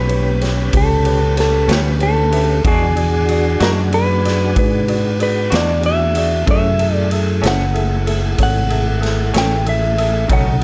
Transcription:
Already playing: fingered electric bass B1, tonewheel organ C#4 G4 B4, electric slide guitar B4
0.08 upright piano G4 B4 C#5, ride
0.41 upright piano G4 B4 C#5, snare, ride
0.73 fingered electric bass C#2, upright piano G4 B4 C#5, kick, ride
0.77 electric slide guitar A4
1.05 upright piano G4 B4 C#5, ride
1.36 upright piano G4 B4 C#5, snare, ride
1.40 electric slide guitar A4
1.68 fingered electric bass D2, clean electric guitar A2 G3 B3 C#4, upright piano G4 B4 C#5, snare, ride
1.72 electric slide guitar G4
1.99 upright piano G4 B4 C#5, ride
2.03 electric slide guitar A4
2.31 upright piano G4 B4 E5, ride
2.63 fingered electric bass E2, clean electric guitar E3 G#3 D4 F#4, tonewheel organ D4 F#4 G#4, upright piano F#4 G#4 D5, kick, ride
2.67 electric slide guitar G#4
2.95 upright piano F#4 G#4 D5, ride
3.28 upright piano F#4 G#4 D5, ride
3.59 fingered electric bass F#2, clean electric guitar E3 G#3 D4 F#4, upright piano F#4 G#4 D5, electric slide guitar A#4, snare, ride
3.91 upright piano F#4 G#4 D5, electric slide guitar B4, ride
4.24 upright piano F#4 G#4 D5, snare, ride
4.56 fingered electric bass G#2, upright piano F#4 G#4 D5, electric slide guitar B4, kick, ride
4.87 upright piano F#4 G#4 D5, ride
5.19 upright piano F#4 G#4 D5, electric slide guitar B4, ride
5.50 fingered electric bass E2, clean electric guitar E3 G#3 D4 F#4, upright piano F#4 G#4 D5, snare, ride
5.55 electric slide guitar D5
5.83 upright piano F#4 G#4 D5, electric slide guitar E5, ride
6.15 upright piano F#4 G#4 D5, ride
6.46 clean electric guitar F#2 E3 A3 C#4, fingered electric bass F#2, tonewheel organ A3 E4 G#4, upright piano G#4 A4 E5, kick, ride
6.51 electric slide guitar E5
6.79 upright piano G#4 A4 E5, ride
6.95 electric slide guitar D5
7.11 upright piano G#4 A4 E5, ride
7.42 fingered electric bass F#1, clean electric guitar F#2 E3 A3 C#4, upright piano G#4 A4 E5, snare, ride
7.47 electric slide guitar F#5
7.73 upright piano G#4 A4 E5, ride
8.06 upright piano G#4 A4 E5, ride
8.38 fingered electric bass G#1, upright piano G#4 A4 C#5, kick, ride
8.43 electric slide guitar F#5
8.69 upright piano G#4 A4 E5, ride
9.00 upright piano G#4 A4 E5, ride
9.05 snare
9.33 fingered electric bass A1, clean electric guitar F#2 E3 A3 C#4, upright piano G#4 A4 E5, snare, ride
9.38 electric slide guitar G5
9.65 upright piano G#4 A4 E5, electric slide guitar E5, ride
9.98 upright piano G#4 A4 E5, ride
10.28 fingered electric bass B1, clean electric guitar B2 D#3 A3 C#4, tonewheel organ C#3 D#4 A4, upright piano D#4 A4 C#5, kick, ride
10.33 electric slide guitar F#5

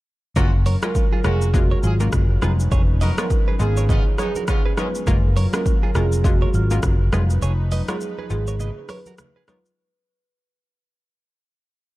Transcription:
0.36 fingered electric bass F#1, analog synth pad F#3 C#4 F4 A#4, synth pluck G#3 A#3 C#4 F4, horn section A#3 C#4 F#4, clean electric guitar F#4 A#4, kick, low conga, shaker
0.66 clean electric guitar A#4 C#5, open hi-hat, high conga, shaker
0.82 synth pluck G#3 A#3 C#4 F4, horn section A#3 C#4 F4, clean electric guitar F#4 A#4, marimba A#4, cross-stick, high conga, shaker
0.95 kick, shaker
1.12 clean electric guitar F4 G#4, high conga
1.24 fingered electric bass F1, synth pluck G#3 A#3 C#4 F4, horn section A#3 C#4 F#4, clean electric guitar F#4 A#4, marimba G#4, cross-stick, shaker
1.42 shaker
1.53 synth pluck G#3 A#3 C#4 F4, marimba F#4, kick, low conga, shaker
1.71 clean electric guitar A#4 C#5
1.83 fingered electric bass G#1, horn section C#4 F4 G#4, marimba F4, high conga, shaker
2.00 synth pluck G#3 A#3 C#4 F4, clean electric guitar F#4 A#4, high conga, shaker
2.12 fingered electric bass F#1, kick, cross-stick, low conga, shaker
2.42 fingered electric bass F1, analog synth pad F3 D#4 B4, synth pluck G#3 B3 D#4 F4, clean electric guitar G#4 B4, cross-stick, high conga, shaker
2.60 shaker
2.72 fingered electric bass F1, clean electric guitar G#4 C#5, kick, low conga, shaker
3.01 horn section D#4 F#4 A#4, clean electric guitar B4 D#5, open hi-hat, high conga, shaker
3.17 synth pluck G#3 B3 D#4 F4, marimba A#4, clean electric guitar A#4 C#5, cross-stick, high conga, shaker
3.30 kick, shaker
3.47 clean electric guitar G#4 B4, high conga
3.59 fingered electric bass G#1, synth pluck G#3 B3 D#4 F4, horn section C#4 F4 G#4, marimba G#4, shaker
3.77 clean electric guitar A#4 C#5, shaker
3.89 horn section B3 C#4 F4, clean electric guitar B4 D#5, kick, low conga, shaker
4.18 horn section G#3 B3 D#4, marimba G#4, clean electric guitar A#4 C#5, cross-stick, high conga, shaker
4.35 clean electric guitar F#4 A#4, high conga, shaker
4.48 horn section B3 C#4 F4, kick, cross-stick, low conga, shaker
4.66 clean electric guitar G#4 B4
4.77 horn section F3 G#3 C#4, synth pluck G#3 B3 D#4 F4, clean electric guitar A#4 C#5, marimba B4, cross-stick, high conga, shaker
4.95 shaker
5.07 fingered electric bass F#1, analog synth pad F#3 F4 A#4, synth pluck G#3 A#3 C#4 F4, clean electric guitar F#4 A#4, kick, low conga, shaker
5.36 clean electric guitar A#4 C#5, open hi-hat, high conga, shaker
5.53 synth pluck G#3 A#3 C#4 F4, clean electric guitar F#4 A#4, marimba A#4, cross-stick, high conga, shaker
5.66 kick, shaker
5.83 clean electric guitar F4 G#4, high conga
5.95 fingered electric bass F1, synth pluck G#3 A#3 C#4 F4, clean electric guitar F#4 A#4, marimba G#4, cross-stick, shaker
6.12 shaker
6.24 synth pluck G#3 A#3 C#4 F4, marimba F#4, kick, low conga, shaker
6.42 clean electric guitar A#4 C#5
6.54 fingered electric bass G#1, marimba F4, high conga, shaker
6.70 synth pluck G#3 A#3 C#4 F4, clean electric guitar F#4 A#4, high conga, shaker
6.83 fingered electric bass F#1, kick, cross-stick, low conga, shaker
7.12 fingered electric bass F1, analog synth pad F3 D#4 B4, synth pluck G#3 B3 D#4 F4, clean electric guitar G#4 B4, cross-stick, high conga, shaker
7.30 shaker
7.42 fingered electric bass F1, clean electric guitar G#4 C#5, shaker
7.72 clean electric guitar B4 D#5, open hi-hat, high conga, shaker
7.88 synth pluck G#3 B3 D#4 F4, marimba G#4, clean electric guitar A#4 C#5, cross-stick, high conga, shaker
8.01 shaker
8.18 clean electric guitar G#4 B4, high conga
8.30 fingered electric bass G#1, synth pluck G#3 B3 D#4 F4, marimba G#4, shaker
8.47 clean electric guitar A#4 C#5, shaker
8.59 clean electric guitar B4 D#5, low conga, shaker
8.89 clean electric guitar A#4 C#5, marimba B4, cross-stick, open hi-hat, high conga, shaker
9.06 clean electric guitar F#4 A#4, high conga, shaker
9.18 cross-stick, low conga, shaker
9.36 clean electric guitar G#4 B4
9.48 synth pluck G#3 B3 D#4 F4, clean electric guitar A#4 C#5, marimba B4, cross-stick, high conga, shaker
9.65 shaker

